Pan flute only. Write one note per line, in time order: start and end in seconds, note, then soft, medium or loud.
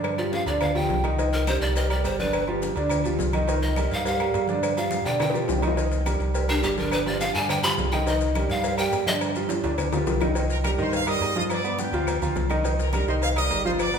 0.19 0.34 D5 medium
0.33 0.46 F5 loud
0.47 0.63 D5 medium
0.61 0.77 F5 medium
0.75 1.18 G5 loud
1.33 1.48 A#4 loud
1.47 1.61 C5 loud
1.61 1.77 D5 medium
1.76 1.90 D#5 loud
1.90 2.06 D5 loud
2.05 2.21 C5 loud
2.19 2.48 B4 medium
3.63 3.95 D#5 loud
3.93 4.06 F5 loud
4.07 4.46 F5 medium
4.78 5.07 F5 loud
5.06 5.20 G5 loud
5.21 5.61 G5 medium
6.49 6.65 D4 medium
6.63 6.78 G4 medium
6.79 6.94 A#4 medium
6.93 7.06 B4 medium
7.07 7.22 D5 loud
7.21 7.36 F5 loud
7.34 7.51 G#5 loud
7.50 7.63 G5 loud
7.63 7.72 B5 loud
7.92 8.09 G5 loud
8.08 8.52 D#5 medium
8.50 8.79 F5 loud
8.78 9.07 G5 loud
9.07 9.16 D#5 loud